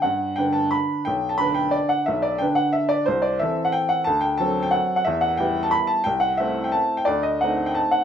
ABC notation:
X:1
M:3/4
L:1/16
Q:1/4=178
K:Bphr
V:1 name="Upright piano"
f4 g2 a2 b4 | g3 a b2 g2 d2 f2 | e2 d2 g2 f2 e2 d2 | c2 d2 e3 f g2 f2 |
a2 g2 a3 g f3 f | e2 f2 g3 a b2 a2 | g2 f2 e3 g a3 g | d2 _e2 f3 g a2 f2 |]
V:2 name="Upright piano"
G,,4 [D,DB]8 | B,,,4 [D,DB]8 | B,,,4 [D,DB]8 | C,,4 [E,CA]8 |
D,,4 [F,CA]8 | E,,4 [G,B,E]8 | C,,4 [A,CE]8 | D,,4 [A,C_E]8 |]